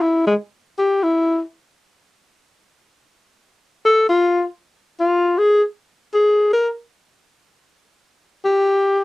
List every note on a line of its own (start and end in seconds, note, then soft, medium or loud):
0.02 0.26 E4 medium
0.27 0.34 G#3 medium
0.78 1.05 G4 medium
1.03 1.41 E4 medium
3.85 4.08 A4 medium
4.09 4.45 F4 medium
5.00 5.40 F4 medium
5.38 5.63 G#4 medium
6.14 6.49 G#4 medium
6.53 6.68 A#4 medium
8.45 9.04 G4 medium